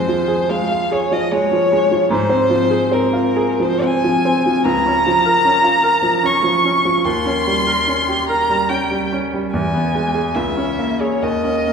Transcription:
Already playing: F2 G#3 C5
0.08 F3
0.28 G#4
0.50 G#3 F5
0.72 F4
0.91 G#4 C#5
1.11 F3 D#5
1.32 G#3 C#5
1.52 F3
1.72 G#3
1.91 F3
2.10 G#2 C5
2.30 C4
2.50 F3
2.70 G#4
2.92 C4 A#4
3.13 F4
3.36 G#4
3.60 F3 C5
3.82 C4 G#5
4.04 F3
4.25 C4
4.46 F3
4.65 C#2 A#5
4.86 C#4
5.07 F3
5.26 A#4
5.45 C#4
5.64 F4
5.83 A#4
6.02 F3
6.23 C#4 C#6
6.43 F3
6.64 C#4
6.85 F3
7.05 D#2 C6
7.25 C#4
7.47 G3
7.67 A#4
7.87 C#4
8.08 G4
8.29 A#4 A#5
8.49 G3
8.69 C#4 G5
8.91 G3
9.12 C#4
9.33 G3
9.53 E2 G#5
9.74 B3
9.95 G#3
10.15 G#4
10.35 C#2 E5
10.57 C#4
10.79 A#3
11.01 G#4 C#5
11.22 D#2 D#5
11.44 C#4
11.68 A#3

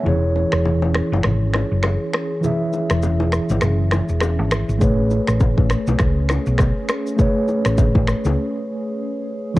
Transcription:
Already playing: C#4
0.03 E1 E3 E4 G#4, low conga
0.08 C#5
0.36 low bongo
0.52 E1, finger snap, cross-stick
0.65 high bongo, low conga
0.82 low bongo
0.95 finger snap, cross-stick
1.12 F#1, high bongo, low bongo
1.23 G#1, finger snap, cross-stick, low conga
1.54 finger snap, cross-stick, low bongo
1.72 F#1
1.83 finger snap, cross-stick, high bongo
2.13 finger snap, cross-stick
2.41 E3 E4 G#4, low conga, shaker
2.46 E5
2.73 low bongo, shaker
2.90 E1, finger snap, cross-stick, shaker
3.02 high bongo, low conga, shaker
3.20 low bongo
3.32 finger snap, cross-stick, shaker
3.49 G#1, high bongo, low bongo, shaker
3.61 F#1, finger snap, cross-stick, low conga, shaker
3.91 finger snap, cross-stick, low bongo, shaker
4.09 E1, shaker
4.20 finger snap, cross-stick, high bongo, shaker
4.39 G#1
4.51 finger snap, cross-stick, shaker
4.69 G#1, shaker
4.79 A1 A3 C#4 G#4 B4, kick, low conga, shaker
4.84 C#5
5.10 low bongo, shaker
5.27 A1, finger snap, cross-stick, shaker
5.40 kick, high bongo, low conga, shaker
5.58 kick, low bongo
5.70 finger snap, cross-stick, shaker
5.87 B1, high bongo, low bongo, shaker
5.99 C#2, finger snap, kick, cross-stick, low conga, shaker
6.29 finger snap, cross-stick, low bongo, shaker
6.46 B1, shaker
6.58 finger snap, kick, cross-stick, high bongo, shaker
6.89 finger snap, cross-stick, shaker
7.07 shaker
7.16 A3 G#4 B4, kick, low conga, shaker
7.21 C#5
7.48 low bongo, shaker
7.65 A1, finger snap, cross-stick, shaker
7.78 kick, high bongo, low conga, shaker
7.95 kick, low bongo
8.08 finger snap, cross-stick, shaker
8.25 C#2, high bongo, low bongo, shaker
9.54 E3 E4

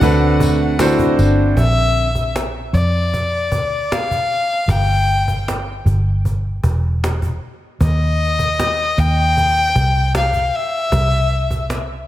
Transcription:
Already playing: D3 D4 F#4 A4 C5 D5 F#5
0.01 D2 D3 A3 C4 D4 F#4 A4 B4, cajon bass, tambourine
0.40 cajon bass, tambourine
0.79 D3 A3 C4 D4 E4 F#4 A4 C5, cajon slap, tambourine
0.99 cajon bass
1.17 G1 D4, tambourine
1.57 A#1 E5, cajon bass
2.15 cajon bass
2.36 cajon slap
2.73 F2 D5, cajon bass
3.14 cajon bass
3.52 D2, cajon bass
3.92 F5, cajon slap
4.11 cajon bass
4.68 G1 G5, cajon bass
5.28 cajon bass
5.48 cajon slap
5.85 G1, cajon bass
6.25 cajon bass
6.64 E1, cajon bass
7.04 cajon slap
7.22 cajon bass
7.81 D#2 D#5, cajon bass
8.39 cajon bass
8.60 cajon slap
8.98 D#2 G5, cajon bass
9.37 cajon bass
9.75 C2, cajon bass
10.15 F5, cajon slap
10.33 cajon bass
10.55 E5
10.92 C2, cajon bass
11.51 cajon bass
11.70 cajon slap

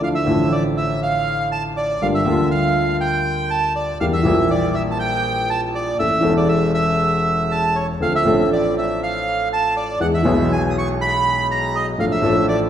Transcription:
0.01 D2 D3 F3 A3 E4 F5
0.15 E5
0.25 A1 A2 D3 F3 A3
0.29 E3
0.52 D5
0.77 E5
1.03 F5
1.52 A5
1.77 D5
2.02 G1 G2 D3 G3 A#3 F4 F5
2.15 E5
2.25 D2 D3 G3 A#3 F4
2.51 F5
3.00 G5
3.50 A5
3.76 D5
4.00 E2 E3 G3 A#3 G4 F5
4.13 E5
4.23 A#1 A#2 E3 G3 A#3
4.28 G4
4.50 D5
4.75 E5
4.91 A5
4.99 G5
5.50 A5
5.75 D5
5.99 A1 A2 E3 A3 C#4 A4 E5
6.21 E1 E2 E3 A3 C#4 A4
6.37 D5
6.48 E5
6.74 E5
7.51 A5
7.75 C#5
8.00 D2 D3 F3 C4 D4 A4 F5
8.15 E5
8.23 A1 A2 F3 C4 D4
8.27 A4
8.53 D5
8.78 E5
9.03 F5
9.53 A5
9.77 D5
10.00 E2 E3 G#3 B3 G#4 F#5
10.14 E5
10.23 B1 B2 E3 G#3 B3
10.27 G#4
10.52 G#5
10.70 D#6
10.78 C#6
11.01 B5
11.51 A#5
11.75 D#5
11.98 A1 A2 F3 A3 D4 A4 F5
12.12 E5
12.22 A1 A2 F3 A3 D4
12.26 A4
12.48 D5

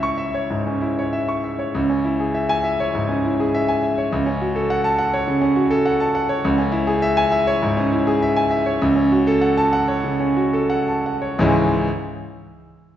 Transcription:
Already playing: C#2 C#4 E4 C#5 E5
0.03 C#6
0.18 E5
0.34 C#5
0.50 G#2
0.67 C#4
0.81 E4
0.99 C#5
1.13 E5
1.29 C#6
1.44 E5
1.59 C#5
1.75 C#2
1.89 C#4
2.04 E4
2.20 G#4
2.34 E5
2.49 G#5
2.64 E5
2.80 C#5
2.95 G#2
3.08 C#4
3.24 E4
3.40 G#4
3.54 E5
3.68 G#5
3.83 E5
3.98 C#5
4.12 C#2
4.26 C#4
4.41 F#4
4.55 A4
4.70 F#5
4.84 A5
4.99 F#5
5.14 C#5
5.28 C#3
5.41 C#4
5.56 F#4
5.71 A4
5.86 F#5
6.00 A5
6.15 F#5
6.29 C#5
6.45 C#2
6.58 C#4
6.72 E4
6.87 G#4
7.02 E5
7.17 G#5
7.32 E5
7.47 C#5
7.62 G#2
7.77 C#4
7.92 E4
8.07 G#4
8.22 E5
8.36 G#5
8.51 E5
8.66 C#5
8.82 C#2
8.95 C#4
9.12 F#4
9.27 A4
9.41 F#5
9.57 A5
9.73 F#5
9.88 C#5
10.04 C#3
10.20 C#4
10.37 F#4
10.53 A4
10.70 F#5
10.88 A5
11.06 F#5
11.22 C#5
11.39 C#2 G#2 E3 G#3 C#4 E4

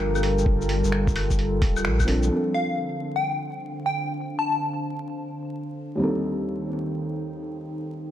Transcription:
Already playing: G1 F3 G3 A#3 D4 F4 G4 A4 A#4 G5
0.00 finger snap
0.15 claves, shaker
0.23 open hi-hat
0.38 shaker
0.46 G1, kick
0.61 shaker
0.69 open hi-hat
0.84 G1, shaker
0.92 finger snap
1.07 kick, shaker
1.16 open hi-hat, claves
1.30 kick, shaker
1.39 open hi-hat
1.62 D1, kick, open hi-hat
1.76 claves, shaker
1.85 A#1, finger snap
2.00 kick, claves, shaker
2.05 F3 C4 D4, open hi-hat
2.09 A4
2.23 F3, shaker
2.30 D3 C4 D4
2.35 A4
2.48 D4 C5
2.54 F5
3.16 G5
3.33 F5
3.86 G5
4.39 A5
5.95 D#2 G3 C4
6.00 D#3 D#4 A4
6.17 G5
6.26 D#4

